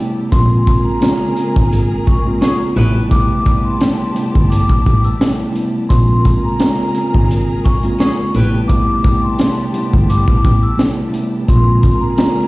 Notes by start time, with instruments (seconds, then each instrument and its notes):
Already playing: tine electric piano C3 G3 A3 B3 E4, string section B3 G4 A5
0.31 double bass A#1, tine electric piano C#3 G#3 A#3 C4 F4, string section G#4 A#4 A#5, vibraphone C6, kick, closed hi-hat
0.67 kick, closed hi-hat
0.84 vibraphone A#5
1.00 tine electric piano C#3 G#3 A#3 C4 F4, snare, closed hi-hat
1.37 closed hi-hat
1.56 double bass G#1, kick
1.73 closed hi-hat
2.07 vibraphone C#6, kick, closed hi-hat
2.25 tine electric piano C#3 G#3 A#3 C4 F4
2.41 saxophone section C#4 F4 G#4, vibraphone C#6, snare, closed hi-hat
2.75 double bass A1, tine electric piano C3 G3 A3 B3 E4, string section B3 G4 A5, saxophone section E4 G4 B4, closed hi-hat
3.08 tine electric piano C3 G3 A3 B3 E4, vibraphone D6, kick, closed hi-hat
3.45 tine electric piano C3 G3 A3 B3 E4, kick, closed hi-hat
3.65 vibraphone C6
3.81 snare, closed hi-hat
4.14 tine electric piano C3 G3 A3 B3 E4, closed hi-hat
4.35 double bass G1, kick
4.50 vibraphone D6, closed hi-hat
4.70 double bass A1, kick
4.86 double bass A1, kick, closed hi-hat
5.04 vibraphone E6, closed hi-hat
5.19 tine electric piano C3 G3 A3 B3 E4, snare, closed hi-hat
5.51 tine electric piano C3 G3 A3 B3 E4
5.55 closed hi-hat
5.89 double bass A#1, tine electric piano C#3 G#3 A#3 C4 F4, string section G#4 A#4 A#5, vibraphone C6, kick, closed hi-hat
6.25 kick, closed hi-hat
6.45 vibraphone A#5
6.58 tine electric piano C#3 G#3 A#3 C4 F4, snare, closed hi-hat
6.95 closed hi-hat
7.14 double bass G#1, kick
7.31 closed hi-hat
7.64 vibraphone C#6, kick, closed hi-hat
7.83 tine electric piano C#3 G#3 A#3 C4 F4, closed hi-hat
7.99 saxophone section C#4 F4 G#4, vibraphone C#6, snare, closed hi-hat
8.33 double bass A1, tine electric piano C3 G3 A3 B3 E4, string section B3 G4 A5, saxophone section E4 G4 B4, closed hi-hat
8.67 tine electric piano C3 G3 A3 B3 E4, vibraphone D6, kick, closed hi-hat
9.03 tine electric piano C3 G3 A3 B3 E4, kick, closed hi-hat
9.23 vibraphone C6
9.39 snare, closed hi-hat
9.72 tine electric piano C3 G3 A3 B3 E4, closed hi-hat
9.93 double bass G1, kick
10.09 vibraphone D6, closed hi-hat
10.28 double bass A1, kick
10.44 double bass A1, kick, closed hi-hat
10.63 vibraphone E6
10.77 tine electric piano C3 G3 A3 B3 E4, snare, closed hi-hat
11.09 tine electric piano C3 G3 A3 B3 E4
11.14 closed hi-hat
11.47 double bass A#1, tine electric piano C#3 G#3 A#3 C4 F4, string section G#4 A#4 A#5, vibraphone C6, kick, closed hi-hat
11.83 kick, closed hi-hat
12.01 vibraphone A#5
12.17 tine electric piano C#3 G#3 A#3 C4 F4, snare, closed hi-hat